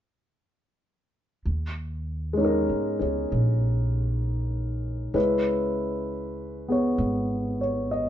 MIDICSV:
0, 0, Header, 1, 3, 480
1, 0, Start_track
1, 0, Tempo, 923077
1, 761, Time_signature, 4, 2, 24, 8
1, 4208, End_track
2, 0, Start_track
2, 0, Title_t, "Grand piano"
2, 0, Program_c, 0, 0
2, 855, Control_c, 0, 64, 127
2, 1213, Note_on_c, 0, 56, 36
2, 1234, Note_on_c, 0, 61, 36
2, 1253, Note_on_c, 0, 63, 31
2, 1272, Note_on_c, 0, 70, 41
2, 1549, Note_off_c, 0, 61, 0
2, 1557, Note_on_c, 0, 61, 29
2, 1572, Note_on_c, 0, 68, 31
2, 2664, Note_off_c, 0, 56, 0
2, 2665, Note_off_c, 0, 61, 0
2, 2672, Note_on_c, 0, 56, 33
2, 2673, Note_on_c, 0, 61, 29
2, 2677, Note_on_c, 0, 64, 29
2, 2681, Note_on_c, 0, 71, 34
2, 2684, Note_off_c, 0, 68, 0
2, 2685, Note_off_c, 0, 63, 0
2, 2686, Control_c, 0, 64, 0
2, 2694, Note_off_c, 0, 70, 0
2, 2788, Control_c, 0, 64, 127
2, 3476, Note_on_c, 0, 59, 28
2, 3482, Note_on_c, 0, 68, 25
2, 3494, Note_on_c, 0, 73, 31
2, 3950, Note_off_c, 0, 73, 0
2, 3958, Note_on_c, 0, 73, 28
2, 4115, Note_on_c, 0, 75, 32
2, 4208, Note_off_c, 0, 56, 0
2, 4208, Note_off_c, 0, 59, 0
2, 4208, Note_off_c, 0, 61, 0
2, 4208, Note_off_c, 0, 64, 0
2, 4208, Note_off_c, 0, 68, 0
2, 4208, Note_off_c, 0, 71, 0
2, 4208, Note_off_c, 0, 73, 0
2, 4208, Note_off_c, 0, 75, 0
2, 4208, End_track
3, 0, Start_track
3, 0, Title_t, "Upright bass"
3, 0, Program_c, 1, 32
3, 757, Note_on_c, 1, 39, 51
3, 1380, Note_off_c, 1, 39, 0
3, 1399, Note_on_c, 1, 44, 38
3, 1550, Note_off_c, 1, 44, 0
3, 1563, Note_on_c, 1, 37, 41
3, 1712, Note_off_c, 1, 37, 0
3, 1726, Note_on_c, 1, 34, 52
3, 2660, Note_off_c, 1, 34, 0
3, 2672, Note_on_c, 1, 37, 51
3, 3613, Note_off_c, 1, 37, 0
3, 3631, Note_on_c, 1, 32, 55
3, 4208, Note_off_c, 1, 32, 0
3, 4208, End_track
0, 0, End_of_file